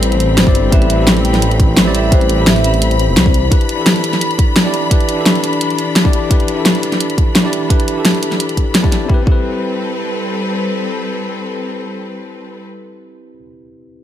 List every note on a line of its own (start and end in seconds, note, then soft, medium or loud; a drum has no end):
0.00 0.46 A1 medium
0.00 3.30 G3 medium
0.00 0.45 C4 medium
0.00 3.30 C4 medium
0.00 0.46 E4 medium
0.00 0.47 G4 medium
0.00 1.02 A4 medium
0.00 0.74 B4 medium
0.00 0.37 C5 medium
0.00 0.48 D5 medium
0.00 9.06 B5 medium
0.00 closed hi-hat medium
0.12 closed hi-hat soft
0.20 closed hi-hat medium
0.38 0.74 C5 medium
0.38 snare loud
0.38 closed hi-hat medium
0.45 0.71 G1 medium
0.45 0.57 C4 medium
0.45 0.58 E4 medium
0.45 0.58 G4 medium
0.45 0.59 D5 medium
0.45 kick loud
0.55 closed hi-hat medium
0.71 2.45 A1 medium
0.71 0.95 C4 medium
0.71 0.96 E4 medium
0.71 0.97 G4 medium
0.71 0.97 B4 medium
0.71 1.05 E5 loud
0.71 kick loud
0.71 closed hi-hat medium
0.82 closed hi-hat soft
0.90 closed hi-hat medium
0.96 1.83 C4 medium
0.96 1.84 E4 medium
0.96 1.85 G4 medium
1.02 1.86 A4 medium
1.07 snare loud
1.07 closed hi-hat medium
1.17 closed hi-hat soft
1.25 1.97 G5 loud
1.25 closed hi-hat medium
1.34 snare soft
1.34 closed hi-hat soft
1.42 closed hi-hat medium
1.51 closed hi-hat soft
1.60 kick loud
1.60 closed hi-hat medium
1.77 snare loud
1.77 closed hi-hat medium
1.85 1.97 C4 medium
1.85 1.97 E4 medium
1.85 1.98 G4 medium
1.85 1.98 D5 medium
1.95 2.11 E5 medium
1.95 closed hi-hat medium
2.10 2.35 C4 medium
2.10 2.36 E4 medium
2.10 2.37 G4 medium
2.10 2.37 B4 medium
2.10 2.44 C5 medium
2.10 kick loud
2.10 closed hi-hat medium
2.21 closed hi-hat soft
2.29 closed hi-hat medium
2.36 3.23 C4 medium
2.36 3.24 E4 medium
2.36 3.24 G4 medium
2.42 3.25 A4 medium
2.47 3.10 A1 medium
2.47 2.63 E5 medium
2.47 snare loud
2.47 closed hi-hat medium
2.56 closed hi-hat soft
2.64 2.72 E5 medium
2.64 closed hi-hat medium
2.74 closed hi-hat soft
2.82 3.11 C5 medium
2.82 closed hi-hat medium
2.91 closed hi-hat soft
2.99 closed hi-hat medium
3.08 3.16 E1 medium
3.08 3.17 D5 medium
3.17 3.50 C2 medium
3.17 3.49 C5 medium
3.17 snare loud
3.17 closed hi-hat medium
3.26 kick loud
3.34 9.06 E3 medium
3.34 9.06 D4 medium
3.34 closed hi-hat medium
3.50 3.74 D4 medium
3.50 3.76 E4 medium
3.50 3.76 G4 medium
3.50 3.77 B4 medium
3.50 kick loud
3.50 closed hi-hat medium
3.61 closed hi-hat soft
3.69 closed hi-hat medium
3.75 4.62 D4 medium
3.75 4.63 E4 medium
3.75 4.64 G4 medium
3.81 4.65 A4 medium
3.86 snare loud
3.86 closed hi-hat medium
3.96 closed hi-hat soft
4.04 closed hi-hat medium
4.13 snare soft
4.13 closed hi-hat soft
4.21 closed hi-hat medium
4.31 closed hi-hat soft
4.39 kick loud
4.39 closed hi-hat medium
4.56 snare loud
4.56 closed hi-hat medium
4.64 4.76 D4 medium
4.64 4.77 E4 medium
4.64 4.77 G4 medium
4.64 4.78 D5 medium
4.74 closed hi-hat medium
4.90 5.14 D4 medium
4.90 5.15 E4 medium
4.90 5.16 G4 medium
4.90 5.16 B4 medium
4.90 kick loud
4.90 closed hi-hat medium
5.00 closed hi-hat soft
5.09 closed hi-hat medium
5.15 6.02 D4 medium
5.15 6.03 E4 medium
5.15 6.04 G4 medium
5.21 6.05 A4 medium
5.26 snare loud
5.26 closed hi-hat medium
5.35 closed hi-hat soft
5.44 closed hi-hat medium
5.53 closed hi-hat soft
5.61 closed hi-hat medium
5.70 closed hi-hat soft
5.79 closed hi-hat medium
5.96 snare loud
5.96 closed hi-hat medium
6.03 6.16 D4 medium
6.03 6.16 E4 medium
6.03 6.17 G4 medium
6.03 6.17 D5 medium
6.03 kick medium
6.13 closed hi-hat medium
6.29 6.53 D4 medium
6.29 6.55 E4 medium
6.29 6.55 G4 medium
6.29 6.56 B4 medium
6.29 kick loud
6.29 closed hi-hat medium
6.40 closed hi-hat soft
6.48 closed hi-hat medium
6.54 7.41 D4 medium
6.54 7.42 E4 medium
6.54 7.43 G4 medium
6.60 7.44 A4 medium
6.66 snare loud
6.66 closed hi-hat medium
6.75 closed hi-hat soft
6.83 closed hi-hat medium
6.92 snare soft
6.92 closed hi-hat soft
7.00 closed hi-hat medium
7.10 closed hi-hat soft
7.18 kick medium
7.18 closed hi-hat medium
7.35 snare loud
7.35 closed hi-hat medium
7.43 7.55 D4 medium
7.43 7.56 E4 medium
7.43 7.56 G4 medium
7.43 7.57 D5 medium
7.53 closed hi-hat medium
7.69 7.93 D4 medium
7.69 7.94 E4 medium
7.69 7.95 G4 medium
7.69 7.95 B4 medium
7.69 kick loud
7.69 closed hi-hat medium
7.80 closed hi-hat soft
7.88 closed hi-hat medium
7.94 8.81 D4 medium
7.94 8.82 E4 medium
7.94 8.83 G4 medium
8.00 8.84 A4 medium
8.05 snare loud
8.05 closed hi-hat medium
8.15 closed hi-hat soft
8.23 closed hi-hat medium
8.32 snare soft
8.32 closed hi-hat soft
8.40 closed hi-hat medium
8.49 closed hi-hat soft
8.57 kick medium
8.57 closed hi-hat medium
8.75 snare loud
8.75 closed hi-hat medium
8.82 8.95 D4 medium
8.82 8.95 E4 medium
8.82 8.96 G4 medium
8.82 8.96 D5 medium
8.82 kick loud
8.92 snare soft
8.92 closed hi-hat medium
9.05 9.17 C4 medium
9.05 9.19 E4 medium
9.09 12.65 G3 medium
9.09 12.65 C4 medium
9.09 9.21 G4 medium
9.09 12.65 A4 medium
9.09 12.65 B4 medium
9.09 kick loud
9.14 9.22 B4 medium
9.23 13.32 C4 medium
9.23 13.34 E4 medium
9.27 13.35 G4 medium
9.27 kick loud
9.32 13.37 B4 medium